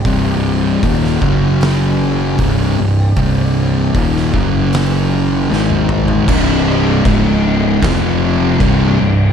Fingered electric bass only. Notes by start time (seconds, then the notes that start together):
0.05 C1
0.83 D#1
1.22 F#1
2.39 C1
2.79 C1
3.17 C1
3.95 D#1
4.34 F#1
5.51 G#1
6.28 C1
7.05 C#1
7.82 F1
8.61 C1
9.01 C1